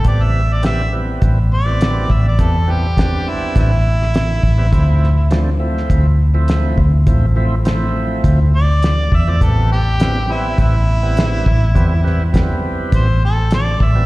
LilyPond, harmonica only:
\new Staff \with { instrumentName = "Harmonica" } { \time 4/4 \key a \minor \tempo 4 = 102 d''16 e''8 d''16 e''8 r4 d''4 e''16 d''16 | a'8 g'4 e'8 e'2~ | e'4 r2. | r2 r8 d''4 e''16 d''16 |
a'8 g'4 e'8 e'2~ | e'4 r4 c''8 a'8 d''8 e''8 | }